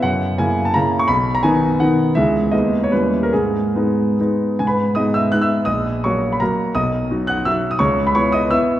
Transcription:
<<
  \new Staff \with { instrumentName = "Grand piano" } { \time 3/4 \key gis \minor \tempo 4 = 167 fis''4 gis''8. a''16 ais''8. cis'''16 | b''8. ais''16 gis''4 fis''4 | e''4 dis''8. cis''16 b'8. ais'16 | gis'2 r4 |
gis''16 <b' b''>8. <dis'' dis'''>8 <e'' e'''>8 fis'''16 <e'' e'''>8. | <dis'' dis'''>4 <cis'' cis'''>8. b''16 <ais' ais''>4 | <dis'' dis'''>4. <fis'' fis'''>8 <e'' e'''>8. dis'''16 | <cis'' cis'''>8. b''16 <cis'' cis'''>8 <dis'' dis'''>8 <e'' e'''>4 | }
  \new Staff \with { instrumentName = "Grand piano" } { \time 3/4 \key gis \minor fis,4 <cis ais e'>4 <cis ais e'>4 | b,,4 <dis b dis'>4 <dis b dis'>4 | <cis, e gis gis'>4 <dis, gis b dis'>4 <dis, g cis' e'>4 | gis,4 <gis b dis'>4 <gis b dis'>4 |
gis,4 <gis b dis'>4 <gis b dis'>4 | ais,,4 <fis ais fis'>4 <fis ais fis'>4 | b,,4 <fis dis' fis'>4 <fis dis' fis'>4 | cis,4 <b e'>4 <b e'>4 | }
>>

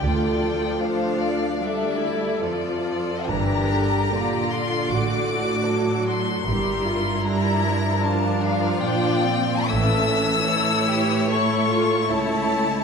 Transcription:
<<
  \new Staff \with { instrumentName = "Violin section" } { \time 4/4 \key d \minor \tempo 4 = 75 g''4 f''4 e''4 d''4 | bes''4. c'''8 d'''4. c'''8~ | c'''4 bes''4 a''8 f''8 g''4 | e'''2 cis'''4 a''4 | }
  \new Staff \with { instrumentName = "Violin section" } { \time 4/4 \key d \minor << { d''4 c''8 d''8 d''4 a'4 | bes'4 d''4 d''4 a'4 | bes'2. d''4 | e''4 cis''2 cis''4 | } \\ { a'4 a'4 a'2 | g'4 f'4 fis'4 d'4 | e'4 d'4 f'2 | a'4 a'8 g'8 a'4 e'4 | } >> }
  \new Staff \with { instrumentName = "Viola section" } { \time 4/4 \key d \minor << { f'4 d'4 d'8 e'8 f'4 | d'4 g'8 f'8 fis'8 fis'4. | g'8 f'8 e'4 d'4 d'8 c'8 | cis'4 e'4 e'8 f'8 e'4 | } \\ { d8 f4. g4 f4 | e8 d8 d2 fis4 | g4 g8 f2~ f8 | e8 e4. a4 a4 | } >> }
  \new Staff \with { instrumentName = "Cello section" } { \clef bass \time 4/4 \key d \minor d,2. f,4 | g,4 bes,4 a,2 | g,2. bes,4 | a,2. cis,4 | }
  \new Staff \with { instrumentName = "Double bass section" } { \clef bass \time 4/4 \key d \minor d,4 r2. | g,,4 r4 a,,4 r4 | g,,4 r2. | a,,4 r2. | }
>>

